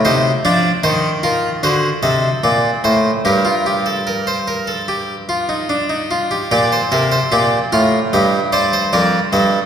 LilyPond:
<<
  \new Staff \with { instrumentName = "Harpsichord" } { \time 4/4 \key g \minor \tempo 4 = 74 << { c''8 d''8 c''8 bes'8 c''8 ees''8 d''8 c''8 | bes'2.~ bes'8 r8 | d''16 c''16 bes'16 c''16 d''8 f''8 ees''8 d''16 c''16 d''8 ees''8 | } \\ { ees'8 d'8 ees'8 f'8 fis'8 a'4. | g'16 f'16 g'16 a'16 bes'16 c''16 bes'16 a'16 g'8 f'16 ees'16 d'16 ees'16 f'16 g'16 | g'8 a'8 g'8 f'8 g'8 c''8 bes'8 a'8 | } >> }
  \new Staff \with { instrumentName = "Harpsichord" } { \clef bass \time 4/4 \key g \minor c8 f8 ees4 d8 c8 bes,8 a,8 | g,2.~ g,8 r8 | bes,8 c8 bes,8 a,8 g,4 f,8 g,8 | }
>>